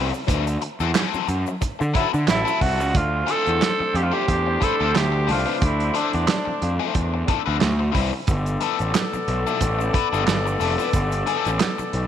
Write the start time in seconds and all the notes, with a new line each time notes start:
Already playing: F#3 E4 A4
0.12 muted overdriven electric guitar stroke, shaker
0.27 D2 F#3 C4 E4 B4, kick, closed hi-hat, shaker
0.47 muted overdriven electric guitar stroke, closed hi-hat, shaker
0.61 muted overdriven electric guitar stroke, closed hi-hat
0.80 E2 F#3 C4 E4 A4, shaker
0.95 F3 B3 D#4 G#4, snare, clap, closed hi-hat, shaker
1.08 F#3 C4 E4 A4
1.14 muted picked electric bass stroke, shaker
1.27 F#2, muted overdriven electric guitar stroke, closed hi-hat, shaker
1.46 muted overdriven electric guitar stroke, shaker
1.61 muted overdriven electric guitar stroke, kick, closed hi-hat, shaker
1.79 D3, muted overdriven electric guitar stroke, shaker
1.94 F#3 C4 E4 A4 B4, kick, closed hi-hat
2.13 D3, muted overdriven electric guitar stroke, shaker
2.27 A1 F#3 E4 A4, muted overdriven electric guitar stroke, snare, clap, closed hi-hat, shaker
2.45 F#3 C4 E4 A4, shaker
2.60 C2 F#4, muted overdriven electric guitar stroke, kick, open hi-hat
2.78 C#2, muted overdriven electric guitar stroke, shaker
2.93 D2 A3 D4 C5, kick, closed hi-hat
2.97 F4
3.26 F3 C4 E4 A4, closed hi-hat
3.31 A4
3.46 E2, closed hi-hat
3.61 muted overdriven electric guitar stroke, snare, clap, closed hi-hat
3.79 muted overdriven electric guitar stroke, muted picked electric bass stroke
3.94 F2 G4, closed hi-hat
4.03 F4
4.11 F3 C4 E4 G4 A4
4.27 E2, muted overdriven electric guitar stroke, kick, closed hi-hat
4.46 muted overdriven electric guitar stroke
4.60 F3 C4 E4 A4 B4, kick, closed hi-hat
4.80 D2 F3 C4 E4 A4
4.94 D2 G4, muted overdriven electric guitar stroke, snare, clap, closed hi-hat
5.12 muted overdriven electric guitar stroke
5.27 C2 F3 C4 E4 A4, open hi-hat
5.31 F4
5.46 F3 C4 E4 B4
5.55 F4
5.62 D2 E4, kick, closed hi-hat
5.80 closed hi-hat
5.94 F3 C4 D4 E4 A4, closed hi-hat
6.13 E2, closed hi-hat
6.27 muted overdriven electric guitar stroke, snare, clap, closed hi-hat
6.45 muted overdriven electric guitar stroke, muted picked electric bass stroke
6.62 F2, closed hi-hat
6.79 F3 C4 E4 A4
6.94 E2, muted overdriven electric guitar stroke, kick, closed hi-hat
7.14 muted overdriven electric guitar stroke
7.28 F3 C4 E4 A4, kick, closed hi-hat
7.46 D2 F3 C4 E4 B4
7.61 D2, muted overdriven electric guitar stroke, snare, clap, closed hi-hat
7.79 muted overdriven electric guitar stroke
7.92 C2 F3 C4 E4 B4, kick, open hi-hat
8.13 muted overdriven electric guitar stroke
8.27 G1 B3 A4 D5, kick, closed hi-hat, shaker
8.46 closed hi-hat, shaker
8.61 F3 B3 E4 A4, closed hi-hat
8.79 A1, closed hi-hat, shaker
8.94 muted overdriven electric guitar stroke, snare, clap, closed hi-hat, shaker
9.13 muted overdriven electric guitar stroke, muted picked electric bass stroke, shaker
9.28 B1, closed hi-hat
9.47 F3 B3 E4 A4, shaker
9.61 A1, muted overdriven electric guitar stroke, kick, closed hi-hat, shaker
9.79 muted overdriven electric guitar stroke, shaker
9.93 F3 B3 E4 B4, kick, closed hi-hat
10.13 G1 F3 B3 E4 A4, shaker
10.26 G1, muted overdriven electric guitar stroke, snare, clap, closed hi-hat, shaker
10.45 muted overdriven electric guitar stroke, shaker
10.60 F1 F3 B3 E4 A4, open hi-hat, shaker
10.78 F3 B3 E4 B4, shaker
10.93 G1, kick, closed hi-hat, shaker
11.12 closed hi-hat, shaker
11.26 F3 B3 E4 A4, closed hi-hat
11.45 A1, closed hi-hat, shaker
11.60 muted overdriven electric guitar stroke, snare, clap, closed hi-hat, shaker
11.78 muted overdriven electric guitar stroke, muted picked electric bass stroke, shaker
11.93 B1, closed hi-hat